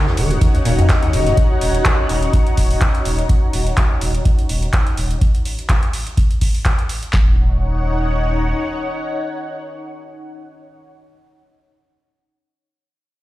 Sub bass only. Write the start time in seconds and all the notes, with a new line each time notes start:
0.17 D#1
0.65 D#1
1.13 D#1
1.61 D#1
2.09 D#1
2.57 D#1
3.05 D#1
3.53 D#1
4.01 D#1
4.49 D#1
4.97 D#1
7.13 D#1